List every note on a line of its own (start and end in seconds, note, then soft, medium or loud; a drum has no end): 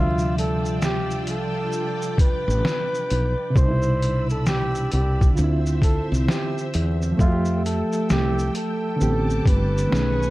0.00 1.29 D2 medium
0.00 3.49 C3 medium
0.00 3.51 F3 medium
0.00 3.54 G3 medium
0.00 0.34 F4 loud
0.00 3.52 F4 medium
0.00 5.34 D5 medium
0.00 3.56 E5 medium
0.00 3.51 G5 medium
0.00 1.70 E6 medium
0.18 shaker soft
0.38 0.79 A4 medium
0.38 closed hi-hat medium
0.38 shaker soft
0.65 shaker soft
0.82 1.25 G4 medium
0.82 snare loud
0.82 shaker medium
1.11 shaker soft
1.27 1.67 C2 medium
1.27 2.16 A4 medium
1.27 closed hi-hat medium
1.27 shaker soft
1.72 3.53 D6 medium
1.72 shaker medium
2.02 shaker medium
2.18 3.52 B4 loud
2.18 kick medium
2.18 closed hi-hat medium
2.18 shaker soft
2.48 2.62 A1 medium
2.48 shaker medium
2.65 snare loud
2.65 shaker medium
2.95 shaker soft
3.10 3.34 B1 medium
3.10 closed hi-hat medium
3.10 shaker soft
3.50 5.31 C3 medium
3.55 4.88 C2 loud
3.55 5.34 G3 medium
3.55 4.26 C5 loud
3.55 5.36 B5 medium
3.55 5.35 E6 medium
3.55 kick loud
3.55 shaker medium
3.60 5.36 B2 medium
3.64 3.68 D#4 medium
3.71 5.41 E4 medium
3.82 shaker soft
4.03 closed hi-hat medium
4.03 shaker soft
4.30 4.49 A4 medium
4.30 shaker soft
4.46 4.89 G4 medium
4.46 snare loud
4.46 shaker medium
4.75 shaker soft
4.92 5.31 C2 medium
4.92 5.34 G4 medium
4.92 closed hi-hat medium
4.92 shaker soft
5.21 kick medium
5.21 shaker soft
5.30 7.12 D3 medium
5.35 6.00 D2 medium
5.35 7.15 F4 medium
5.35 7.17 C5 medium
5.35 7.17 E5 medium
5.35 7.17 E6 medium
5.35 shaker medium
5.40 7.17 C4 soft
5.44 7.19 E4 medium
5.66 shaker medium
5.82 6.08 A4 medium
5.82 kick medium
5.82 closed hi-hat medium
5.82 shaker medium
6.12 6.26 C2 medium
6.12 shaker medium
6.28 6.70 G4 medium
6.28 snare loud
6.28 shaker medium
6.58 shaker soft
6.74 7.13 E2 medium
6.74 closed hi-hat medium
6.74 shaker soft
7.02 shaker soft
7.12 8.94 F3 medium
7.17 7.81 F2 loud
7.17 8.96 A3 medium
7.17 7.61 F4 loud
7.17 8.99 A4 medium
7.17 9.89 G5 medium
7.17 8.99 E6 medium
7.17 kick loud
7.17 shaker medium
7.21 8.99 E5 medium
7.26 7.31 F#4 medium
7.32 9.02 G4 medium
7.45 shaker soft
7.65 8.13 A4 medium
7.65 closed hi-hat medium
7.65 shaker soft
7.93 shaker soft
8.10 8.49 C2 medium
8.10 8.52 G4 medium
8.10 snare loud
8.10 shaker medium
8.39 shaker soft
8.55 9.49 A4 medium
8.55 closed hi-hat medium
8.55 shaker soft
8.96 9.90 D3 medium
8.96 9.91 B3 medium
9.01 9.40 A1 medium
9.01 9.92 C4 medium
9.01 9.93 G4 medium
9.01 9.91 A4 medium
9.01 9.91 A5 medium
9.01 9.91 D6 medium
9.01 shaker medium
9.30 shaker medium
9.46 9.85 G1 medium
9.46 10.30 B4 loud
9.46 kick medium
9.46 closed hi-hat medium
9.46 shaker medium
9.78 shaker medium
9.87 10.30 D#3 medium
9.87 10.30 A3 medium
9.87 10.30 C#6 medium
9.91 10.30 B1 medium
9.91 10.30 A3 medium
9.91 10.30 C#4 medium
9.91 10.30 G#4 medium
9.91 10.30 G#5 medium
9.91 10.30 D#6 medium
9.91 snare loud
9.91 shaker medium
10.22 shaker soft